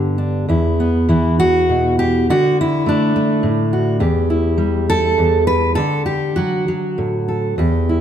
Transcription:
Already playing: G2 D3 B3 D4 G4
0.18 D4
0.48 E2 E4
0.80 B3
1.09 E3 E4
1.40 F#4
1.69 B2
1.99 G4
2.30 D3 F#4
2.61 E4
2.86 A3 D4
3.16 A3
3.43 A2
3.73 F#4
4.00 E2 G4
4.30 E4
4.58 G3
4.90 A4
5.18 E2
5.47 B4
5.75 D3 A4
6.06 G4
6.36 F#3 F#4
6.68 F#3
6.98 A2
7.28 A4
7.58 E2 G4
7.89 E4

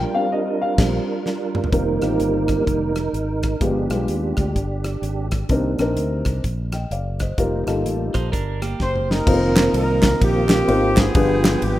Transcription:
Already playing: G3 D4 F4 A#4 G5
0.13 G3 C4 D4 F5
0.32 D#5
0.62 F5
0.78 A#1 G3 C4 D4, kick, snare, crash
1.26 snare
1.55 mid tom
1.64 floor tom
1.72 F1 D#3 G3 A#3 C4 D#4 F4 A#4, kick, closed hi-hat
2.01 A1 C4 D#4 F4 G4, cross-stick, closed hi-hat
2.19 G1, closed hi-hat
2.48 kick, cross-stick, closed hi-hat
2.65 F1 D#3 G3 A#3 D#4 A#4, kick, closed hi-hat
2.96 cross-stick, closed hi-hat
3.13 G#1, closed hi-hat
3.43 kick, cross-stick, closed hi-hat
3.60 G1 G2 F3 G#3 B3 D4 F4 G4, kick, closed hi-hat
3.90 B1 G#3 B3 F4 G4, cross-stick, closed hi-hat
4.08 D#2, closed hi-hat
4.37 D2, kick, cross-stick, closed hi-hat
4.56 G1, kick, closed hi-hat
4.84 cross-stick, closed hi-hat
5.02 G#1, closed hi-hat
5.31 kick, cross-stick, closed hi-hat
5.49 C2 C3 D#3 A#3 C4 D4 D#4 A#4, kick, closed hi-hat
5.79 A#1 C4 D4 D#4 A#4, cross-stick, closed hi-hat
5.96 D2, closed hi-hat
6.25 C2, kick, cross-stick, closed hi-hat
6.44 A#1, kick, closed hi-hat
6.72 D#5 G5, cross-stick, closed hi-hat
6.91 F#1 D5 F5, closed hi-hat
7.20 C5 D#5, kick, cross-stick, closed hi-hat
7.38 F1 G3 A#3 D#4 F4 G4 A#4, kick, closed hi-hat
7.66 G1 D#4 F4 G4 A4, cross-stick, closed hi-hat
7.84 A1, closed hi-hat
8.14 A#1 D#4 C5, kick, cross-stick, closed hi-hat
8.32 G1 D4 A#4, kick, closed hi-hat
8.62 A#3 G4, cross-stick, closed hi-hat
8.80 F#1 C5, kick, snare
8.96 mid tom
9.10 D#4 A#4, snare
9.26 F1 D#3 A#3 C4 D#4 F4 A4 C5, kick, crash
9.32 A#4
9.56 snare, clap, ride
9.73 C2 D#4 A#4, ride
10.02 kick, snare, clap, ride
10.21 A#1 A#3 D#4 G4, kick, ride
10.49 snare, clap, ride
10.67 G#1 C4 D#4 F4 A#4 C5, ride
10.96 B3 F4 G#4, kick, snare, clap, ride
11.14 G1 G2 F3 G3 B3 D4 F4 G#4 B4 G5, kick, ride
11.44 snare, clap, ride
11.62 G#1 G4, ride

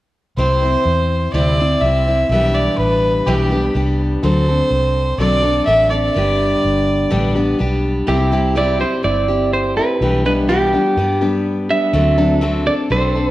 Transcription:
0.37 C2 C3 G3 C4 E4 C5
0.63 C4 E4 C5
0.85 E2
1.33 D2 C3 G3 C4 E4 C5 D5
1.60 C4 E4 C5
1.81 C2 G3 C4 E5
1.85 E4 C5
2.08 C4 E4 C5
2.29 B1 B2 E3 G3 E5
2.34 B3 D4 G4
2.55 D5
2.78 A1 B4
3.26 B1 B2 E3 G3 B3 D4 G4
3.51 G3 B3 D4 G4
3.74 C2 G3 B3 D4 G4
4.23 D2 D3 F#3 C4 D4 A4 C5
4.48 C4 D4 A4
4.71 C2
5.18 B1 D3 F#3 C4 D4 A4 D5
5.42 C4 D4 A4
5.65 A1 F#3 C4 D4 A4 E5
5.90 C4 D4 A4 D5
6.14 G1 G2 D3 G3 B3 D4 G4
6.64 G1
7.10 A1 G2 D3 G3 B3 D4 G4
7.35 G3 B3 D4 G4
7.59 B1 G3 B3 D4 G4
8.07 C2 C3 G3 C4 E4 G4
8.32 C3 G3 C4 E4 G4
8.55 C3 G3 C4 E4 G4 D5
8.80 C4 E4 G4 C5
9.03 G1 G3 C4 E4 G4 D5
9.28 C4 E4 G4
9.53 C5
9.76 C4 E4 G4 B4
10.01 B1 B2 E3 G3 B3 D4 G4
10.25 B2 E3 G3 B3 D4 G4 B4
10.48 B2 E3 G3 B3 D4 G4
10.73 G3 B3 D4 G4
10.97 G2 G3 B3 D4 G4
11.21 G3 B3 D4 G4
11.69 G3 B3 D4 G4 E5
11.93 D2 D3 F#3 C4 D4 A4
12.18 D3 F#3 C4 D4 A4
12.41 D3 F#3 C4 D4 A4
12.66 C4 D4 A4 D5
12.90 B1 F#3 C4 D4 A4 C5
13.15 C4 D4 A4
13.28 B4

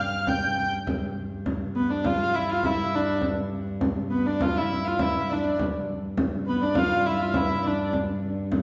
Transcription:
Already playing: G2 F6
0.00 F5 F6
0.27 G5 G6, frame drum
0.57 frame drum
0.87 G2, frame drum
1.46 frame drum
1.76 B3 B4
1.89 D4 D5
2.04 F4 F5, frame drum
2.33 E4 E5
2.50 F4 F5
2.63 E4 E5, frame drum
2.95 D4
3.22 frame drum
3.81 frame drum
4.10 B3 B4
4.26 D4 D5
4.41 F4 F5, frame drum
4.56 E4 E5
4.85 F4 F5
4.99 E4 E5, frame drum
5.30 D4 D5
5.59 G2, frame drum
6.17 frame drum
6.46 B3 B4 B5
6.61 D4 D5
6.75 F4 F5, frame drum
7.05 E4 E5
7.17 F5
7.21 F4
7.33 E4 E5, frame drum
7.63 D5
7.67 D4
7.93 frame drum
8.52 frame drum

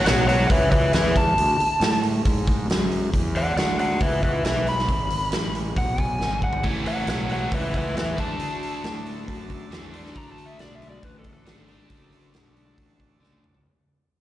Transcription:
0.06 B1 C#5 F#5, snare, open hi-hat
0.28 C#5 F#5, open hi-hat
0.50 C#2 B4 E5, kick, open hi-hat
0.72 B4 E5, kick, open hi-hat
0.93 E2 B4 E5, snare, open hi-hat
1.16 A5, kick, open hi-hat
1.38 D2, open hi-hat
1.60 muted fingered electric bass stroke, open hi-hat
1.80 A2, snare, open hi-hat
2.03 open hi-hat
2.25 G#2, kick, open hi-hat
2.47 kick, open hi-hat
2.68 F#2, snare, open hi-hat
2.92 open hi-hat
3.13 E2, kick, open hi-hat
3.35 D5 F#5, open hi-hat
3.56 D2 D5 F#5, snare, open hi-hat
3.79 D5 F#5, open hi-hat
4.00 C#2 B4 E5, kick, open hi-hat
4.23 B4 E5, kick, open hi-hat
4.44 B1 B4 E5, snare, open hi-hat
4.67 B5, open hi-hat
4.79 snare
4.89 G#1, kick, open hi-hat
5.10 open hi-hat
5.32 A1, snare, open hi-hat
5.55 open hi-hat
5.76 B1 F#5, kick, open hi-hat
5.98 G#5, kick, open hi-hat
6.20 G#1, snare
6.42 F#5, kick
6.53 floor tom
6.62 A1 A2 E3 C#4 E4 A4 C#5, kick, open hi-hat
6.67 A3
6.86 C#5 F#5, open hi-hat
7.07 B1 C#5 F#5, snare, open hi-hat
7.29 C#5 F#5, open hi-hat
7.51 C#2 B4 E5, kick, open hi-hat
7.74 B4 E5, kick, open hi-hat
7.95 E2 B4 E5, snare, open hi-hat
8.17 D3 A3 D4 F#4 A4 D5 A5, kick, open hi-hat
8.39 D2, open hi-hat
8.63 open hi-hat
8.84 A2, snare, open hi-hat
9.06 open hi-hat
9.27 F#2, kick, open hi-hat
9.50 kick, open hi-hat
9.71 E2 D3 A3 D4, snare, open hi-hat
9.93 D3 A3 D4, open hi-hat
10.06 snare
10.16 D2 A#5, kick, open hi-hat
10.32 A5
10.38 open hi-hat
10.46 E5
10.59 B1 D5, snare, open hi-hat
10.75 E5
10.82 open hi-hat
10.90 D5
11.03 A1 B4, kick, open hi-hat
11.19 A4
11.24 kick, open hi-hat
11.33 A4
11.45 G#1 D3 A3 D4, snare, open hi-hat
11.65 D3 D4 F#4 A4 D5, open hi-hat
11.69 A3 D4
11.90 F#1, kick, open hi-hat
12.12 open hi-hat
12.33 B1, snare, open hi-hat
12.57 open hi-hat
12.78 A1, kick, open hi-hat
13.00 kick, open hi-hat
13.20 C#2 D3 A3 D4, snare
13.33 high tom
13.44 mid tom
13.54 floor tom

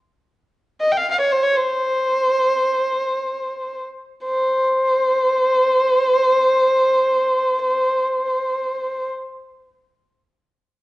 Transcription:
0.81 D#5
0.92 G5
0.97 F5
1.11 F5
1.21 C#5
1.32 C5
1.43 C#5
1.57 C5
4.25 C5

